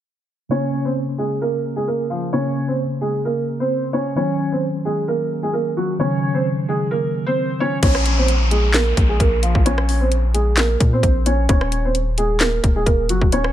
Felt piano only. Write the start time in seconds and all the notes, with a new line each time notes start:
0.51 C#4 C#5
0.85 C4 C5
1.18 G#3 G#4
1.42 A#3 A#4
1.76 G#3 G#4
1.88 A#3 A#4
2.10 F3 F4
2.33 C#4 C#5
2.68 C4 C5
3.01 G#3 G#4
3.25 A#3 A#4
3.60 C4 C5
3.93 C#4 C#5
4.16 C#4 C#5
4.52 C4 C5
4.85 G#3 G#4
5.08 A#3 A#4
5.43 G#3 G#4
5.53 A#3 A#4
5.77 F#3 F#4
6.00 C#4 C#5
6.34 C4 C5
6.69 G#3 G#4
6.91 A#3 A#4
7.26 C4 C5
7.60 C#4 C#5
7.84 C#4 C#5
8.18 C4 C5
8.51 G#3 G#4
8.74 A#3 A#4
9.09 G#3 G#4
9.21 A#3 A#4
9.43 F3 F4
9.66 C#4 C#5
10.01 C4 C5
10.34 G#3 G#4
10.58 A#3 A#4
10.93 C4 C5
11.26 C#4 C#5
11.49 C#4 C#5
11.85 C4 C5
12.18 G#3 G#4
12.41 A#3 A#4
12.76 G#3 G#4
12.86 A#3 A#4
13.10 F#3 F#4
13.32 C#4 C#5